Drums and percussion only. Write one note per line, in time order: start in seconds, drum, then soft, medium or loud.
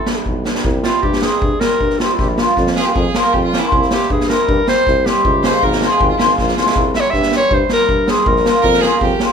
0.06 snare medium
0.26 kick medium
0.45 snare medium
0.55 snare medium
0.65 kick medium
0.84 snare medium
0.93 snare soft
1.03 kick medium
1.13 snare medium
1.22 snare medium
1.42 kick medium
1.61 snare medium
1.81 kick medium
1.90 snare soft
2.00 snare medium
2.19 kick medium
2.19 snare soft
2.38 snare medium
2.57 kick medium
2.57 snare soft
2.67 snare medium
2.76 snare medium
2.96 kick medium
3.14 snare medium
3.34 kick medium
3.53 snare medium
3.72 kick medium
3.82 snare soft
3.91 snare medium
4.02 snare soft
4.10 kick medium
4.21 snare medium
4.30 snare medium
4.49 kick medium
4.67 snare medium
4.87 kick medium
4.87 snare soft
5.06 snare medium
5.25 kick medium
5.44 snare medium
5.63 kick medium
5.72 snare medium
5.82 snare medium
6.01 kick medium
6.19 snare loud
6.29 snare soft
6.38 kick medium
6.38 snare soft
6.48 snare medium
6.57 snare medium
6.66 snare medium
6.76 kick medium
6.94 snare medium
7.13 kick medium
7.13 snare soft
7.22 snare medium
7.32 snare medium
7.51 kick medium
7.69 snare medium
7.79 snare soft
7.89 kick medium
8.08 snare medium
8.26 kick medium
8.36 snare soft
8.46 snare medium
8.64 kick medium
8.74 snare medium
8.82 snare medium
9.01 kick medium
9.20 snare medium